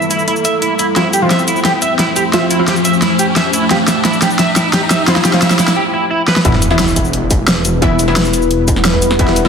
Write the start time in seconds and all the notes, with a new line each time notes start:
Already playing: G3 E4 A4 E5, riser
0.02 shaker
0.10 E4, closed hi-hat, shaker
0.19 shaker
0.28 E4, closed hi-hat
0.36 shaker
0.45 E5, closed hi-hat, shaker
0.62 E4, closed hi-hat
0.79 E4, closed hi-hat, shaker
0.96 F3 A3 C4 E4 F4 C5, snare, closed hi-hat
1.13 G4, closed hi-hat, shaker
1.22 F3 C4 F4
1.31 E5, snare, closed hi-hat
1.39 shaker
1.48 E4, closed hi-hat, shaker
1.56 shaker
1.65 G4, snare, closed hi-hat
1.82 E5, closed hi-hat, shaker
1.99 E4, snare, closed hi-hat
2.16 G4, closed hi-hat, shaker
2.33 F3 C4 F4 E5, snare, closed hi-hat
2.51 E4, closed hi-hat, shaker
2.59 F3 C4 F4
2.68 G4, snare, closed hi-hat
2.76 shaker
2.85 E5, closed hi-hat, shaker
2.94 shaker
3.02 E4, snare, closed hi-hat
3.19 G4, closed hi-hat, shaker
3.36 E5, snare, closed hi-hat
3.53 E4, closed hi-hat, shaker
3.71 F3 C4 F4 G4, snare, closed hi-hat
3.88 E5, snare, closed hi-hat, shaker
4.05 E4, snare, closed hi-hat
4.13 shaker
4.22 G4, snare, closed hi-hat, shaker
4.31 shaker
4.39 E5, snare, closed hi-hat
4.56 E4, snare, closed hi-hat, shaker
4.73 G4, snare, closed hi-hat
4.91 E5, snare, closed hi-hat, shaker
5.08 F3 C4 E4 F4, snare, closed hi-hat
5.16 snare
5.25 G4, snare, closed hi-hat, shaker
5.33 F3 C4 F4, snare
5.42 E5, snare, closed hi-hat
5.51 snare, shaker
5.59 E4, snare, closed hi-hat, shaker
5.68 snare, shaker
5.76 G4
5.93 E4
6.11 E4
6.28 B4, snare
6.36 snare
6.45 E1 E3 G3 B3 E4 B4, kick, closed hi-hat, sub drop
6.53 snare
6.62 E1, closed hi-hat, shaker
6.71 E3 B3 E4, snare
6.79 snare, closed hi-hat
6.88 shaker
6.96 kick, closed hi-hat, shaker
7.05 shaker
7.13 closed hi-hat
7.31 kick, closed hi-hat, shaker
7.48 snare, closed hi-hat
7.65 closed hi-hat, shaker
7.82 E3 B3 E4, kick, closed hi-hat
7.99 E1, closed hi-hat, shaker
8.08 E3 B3 E4, snare
8.16 snare, closed hi-hat
8.25 shaker
8.33 closed hi-hat, shaker
8.42 shaker
8.51 closed hi-hat
8.68 kick, closed hi-hat, shaker
8.76 snare
8.85 snare, closed hi-hat
8.93 kick
9.02 closed hi-hat, shaker
9.11 snare
9.19 E1 E3 B3 E4, kick, closed hi-hat
9.28 snare
9.36 E1, closed hi-hat, shaker
9.45 E3 B3 E4, snare